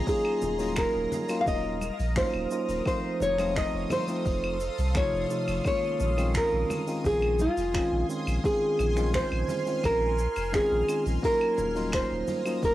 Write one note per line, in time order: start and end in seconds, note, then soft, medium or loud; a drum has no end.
0.00 2.82 A#5 medium
0.06 0.55 F#3 medium
0.06 0.55 A#3 medium
0.06 0.55 C#4 medium
0.06 0.56 D#4 medium
0.06 0.56 F4 medium
0.06 0.78 G#4 loud
0.06 2.83 A#4 medium
0.06 8.40 D#6 medium
0.06 kick loud
0.06 open hi-hat medium
0.06 shaker medium
0.25 claves medium
0.41 0.85 D#1 loud
0.41 low conga medium
0.41 shaker medium
0.59 1.25 F#3 medium
0.59 1.25 A#3 medium
0.59 1.25 C#4 medium
0.59 1.25 D#4 medium
0.59 1.26 F4 loud
0.59 open hi-hat medium
0.59 high conga medium
0.59 shaker medium
0.76 1.40 A#4 medium
0.76 finger snap loud
0.76 kick loud
0.76 open hi-hat medium
0.76 claves medium
0.76 shaker medium
0.95 1.06 D#1 medium
1.12 open hi-hat medium
1.12 high conga medium
1.12 low conga medium
1.12 shaker medium
1.28 1.77 F#3 medium
1.28 1.77 A#3 medium
1.28 1.77 C#4 medium
1.28 1.78 D#4 medium
1.28 1.78 F4 loud
1.28 open hi-hat medium
1.28 claves medium
1.28 shaker medium
1.41 1.47 F5 medium
1.46 1.90 D#1 medium
1.46 2.17 D#5 loud
1.46 kick loud
1.46 open hi-hat medium
1.46 shaker medium
1.81 high conga medium
1.81 claves medium
1.81 shaker medium
1.99 2.23 A#1 loud
1.99 open hi-hat medium
1.99 shaker medium
2.16 2.47 F#3 medium
2.16 2.47 A#3 medium
2.16 2.47 C#4 medium
2.16 2.47 D#4 medium
2.16 2.48 F4 loud
2.16 2.83 C5 loud
2.16 finger snap medium
2.16 kick loud
2.16 open hi-hat medium
2.16 shaker medium
2.34 2.46 D#1 loud
2.34 claves medium
2.50 2.81 F#3 medium
2.50 2.82 A#3 medium
2.50 2.82 C#4 medium
2.50 2.82 D#4 medium
2.50 2.82 F4 medium
2.50 shaker loud
2.69 2.80 D#1 medium
2.69 open hi-hat medium
2.69 shaker medium
2.85 3.34 F3 medium
2.85 3.34 A3 medium
2.85 3.34 C4 medium
2.85 3.35 D#4 medium
2.85 3.35 F4 medium
2.85 5.62 A4 medium
2.85 3.22 C5 loud
2.85 5.63 F5 medium
2.85 5.63 C6 medium
2.85 kick loud
2.85 open hi-hat medium
2.85 claves medium
2.85 shaker medium
3.20 3.64 F1 medium
3.20 3.57 C#5 loud
3.20 low conga medium
3.20 shaker medium
3.38 4.04 F3 medium
3.38 4.04 A3 medium
3.38 4.04 C4 medium
3.38 4.04 D#4 medium
3.38 4.05 F4 medium
3.38 finger snap soft
3.38 open hi-hat medium
3.38 high conga medium
3.38 claves medium
3.38 shaker medium
3.56 3.92 D#5 loud
3.56 finger snap loud
3.56 kick loud
3.56 open hi-hat medium
3.56 shaker medium
3.74 3.85 F1 medium
3.90 4.97 C5 loud
3.90 open hi-hat medium
3.90 high conga medium
3.90 low conga medium
3.90 claves medium
3.90 shaker medium
4.07 4.56 F3 medium
4.07 4.56 A3 medium
4.07 4.56 C4 medium
4.07 4.57 D#4 medium
4.07 4.57 F4 medium
4.07 open hi-hat medium
4.07 shaker medium
4.25 4.69 F1 medium
4.25 kick loud
4.25 open hi-hat medium
4.25 shaker soft
4.44 claves medium
4.60 open hi-hat soft
4.60 shaker medium
4.78 5.02 C2 loud
4.78 open hi-hat medium
4.78 shaker medium
4.95 5.26 C3 medium
4.95 5.26 F3 medium
4.95 5.26 A3 medium
4.95 5.26 D#4 medium
4.95 5.27 F4 medium
4.95 5.66 C#5 loud
4.95 finger snap medium
4.95 kick loud
4.95 open hi-hat medium
4.95 claves medium
4.95 shaker medium
5.13 5.25 F1 medium
5.29 5.61 C3 medium
5.29 5.61 F3 medium
5.29 5.61 A3 medium
5.29 5.61 D#4 medium
5.29 5.62 F4 medium
5.29 shaker medium
5.47 5.60 F1 loud
5.47 open hi-hat medium
5.47 claves medium
5.47 shaker medium
5.64 6.13 D#3 medium
5.64 6.13 G#3 medium
5.64 6.14 A#3 medium
5.64 6.14 C#4 medium
5.64 6.14 F4 medium
5.64 6.37 C#5 loud
5.64 11.19 G#5 medium
5.64 11.19 C6 medium
5.64 kick loud
5.64 open hi-hat medium
5.64 claves medium
5.64 shaker medium
6.00 6.43 A#1 loud
6.00 low conga medium
6.00 shaker medium
6.17 6.83 D#3 medium
6.17 6.83 G#3 medium
6.17 6.83 C4 medium
6.17 6.83 C#4 medium
6.17 6.84 F4 loud
6.17 open hi-hat medium
6.17 high conga medium
6.17 claves medium
6.17 shaker medium
6.34 7.06 A#4 medium
6.34 finger snap loud
6.34 kick loud
6.34 open hi-hat medium
6.34 shaker medium
6.53 6.64 A#1 medium
6.70 open hi-hat medium
6.70 high conga medium
6.70 low conga medium
6.70 claves medium
6.70 shaker medium
6.87 7.35 D#3 medium
6.87 7.35 G#3 medium
6.87 7.35 C4 medium
6.87 7.36 C#4 medium
6.87 7.36 F4 medium
6.87 open hi-hat medium
6.87 shaker medium
7.04 7.48 A#1 medium
7.04 7.41 G#4 loud
7.04 kick loud
7.04 open hi-hat medium
7.04 shaker medium
7.22 claves medium
7.39 8.06 F4 medium
7.39 high conga medium
7.39 shaker medium
7.57 7.81 F1 loud
7.57 open hi-hat medium
7.57 shaker medium
7.73 8.05 D#3 medium
7.73 8.05 G#3 medium
7.73 8.05 C4 medium
7.73 8.05 C#4 medium
7.73 8.06 F4 medium
7.73 finger snap medium
7.73 kick loud
7.73 open hi-hat medium
7.73 claves medium
7.73 shaker soft
7.92 8.04 A#1 loud
8.08 8.40 D#3 medium
8.08 8.40 G#3 medium
8.08 8.40 C4 medium
8.08 8.40 C#4 medium
8.08 8.41 F4 medium
8.08 shaker medium
8.27 8.39 A#1 medium
8.27 open hi-hat medium
8.27 claves medium
8.27 shaker medium
8.43 8.92 D#3 medium
8.43 8.92 G#3 medium
8.43 8.93 C4 medium
8.43 8.93 C#4 medium
8.43 8.93 F4 medium
8.43 9.15 G#4 loud
8.43 11.20 F6 medium
8.43 kick loud
8.43 open hi-hat medium
8.43 shaker medium
8.79 9.23 A#1 loud
8.79 low conga medium
8.79 claves medium
8.79 shaker medium
8.96 9.62 D#3 medium
8.96 9.62 G#3 medium
8.96 9.62 C4 medium
8.96 9.62 C#4 medium
8.96 9.63 F4 loud
8.96 finger snap soft
8.96 open hi-hat medium
8.96 high conga medium
8.96 shaker medium
9.14 9.85 C5 loud
9.14 finger snap medium
9.14 kick loud
9.14 open hi-hat medium
9.14 shaker soft
9.32 9.43 A#1 medium
9.32 claves medium
9.48 open hi-hat medium
9.48 high conga medium
9.48 low conga medium
9.48 shaker medium
9.66 10.14 D#3 medium
9.66 10.14 G#3 medium
9.66 10.14 C4 medium
9.66 10.15 C#4 medium
9.66 10.15 F4 medium
9.66 open hi-hat medium
9.66 shaker medium
9.84 10.27 A#1 medium
9.84 10.55 A#4 loud
9.84 kick loud
9.84 open hi-hat medium
9.84 claves medium
9.84 shaker medium
10.18 shaker medium
10.35 10.60 F1 loud
10.35 open hi-hat medium
10.35 claves medium
10.35 shaker medium
10.52 10.84 D#3 medium
10.52 10.84 G#3 medium
10.52 10.84 C4 medium
10.52 10.84 C#4 medium
10.52 10.85 F4 loud
10.52 11.03 G#4 loud
10.52 finger snap medium
10.52 kick loud
10.52 open hi-hat medium
10.52 shaker medium
10.72 10.83 A#1 medium
10.87 11.19 D#3 medium
10.87 11.19 G#3 medium
10.87 11.19 C4 medium
10.87 11.19 C#4 medium
10.87 11.20 F4 medium
10.87 claves medium
10.87 shaker medium
11.06 11.18 A#1 medium
11.06 open hi-hat medium
11.06 shaker medium
11.22 11.71 F#3 medium
11.22 11.71 A#3 medium
11.22 11.71 C#4 medium
11.22 11.72 D#4 medium
11.22 11.72 F4 medium
11.22 11.94 A#4 loud
11.22 12.74 A#5 medium
11.22 12.74 D#6 medium
11.22 kick loud
11.22 open hi-hat medium
11.22 shaker medium
11.41 claves medium
11.58 12.02 D#1 loud
11.58 low conga medium
11.58 shaker medium
11.75 12.41 F#3 medium
11.75 12.41 A#3 medium
11.75 12.41 C#4 medium
11.75 12.42 D#4 medium
11.75 12.42 F4 loud
11.75 open hi-hat medium
11.75 high conga medium
11.75 shaker medium
11.92 12.64 C5 loud
11.92 finger snap loud
11.92 kick loud
11.92 open hi-hat medium
11.92 claves medium
11.92 shaker soft
12.11 12.22 D#1 medium
12.27 open hi-hat medium
12.27 high conga medium
12.27 low conga medium
12.27 shaker medium
12.45 12.74 F#3 medium
12.45 12.74 A#3 medium
12.45 12.74 C#4 medium
12.45 12.74 D#4 medium
12.45 12.74 F4 medium
12.45 open hi-hat medium
12.45 claves medium
12.45 shaker medium
12.63 12.74 D#1 medium
12.63 12.74 A#4 loud
12.63 kick loud
12.63 open hi-hat medium
12.63 shaker soft